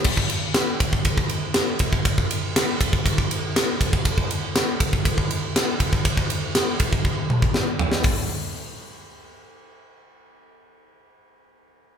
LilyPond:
\new DrumStaff \with { instrumentName = "Drums" } \drummode { \time 4/4 \tempo 4 = 120 <cymc bd>16 bd16 cymr8 <cymr sn>8 <bd cymr>16 bd16 <bd cymr>16 bd16 cymr8 <cymr sn>8 <bd cymr>16 bd16 | <bd cymr>16 bd16 cymr8 <cymr sn>8 <bd cymr>16 bd16 <bd cymr>16 bd16 cymr8 <cymr sn>8 <bd cymr>16 bd16 | <bd cymr>16 bd16 cymr8 <cymr sn>8 <bd cymr>16 bd16 <bd cymr>16 bd16 cymr8 <cymr sn>8 <bd cymr>16 bd16 | <bd cymr>16 bd16 cymr8 <cymr sn>8 <bd cymr>16 bd16 bd8 toml16 bd16 sn8 tomfh16 sn16 |
<hho bd>4 r4 r4 r4 | r4 r4 r4 r4 | }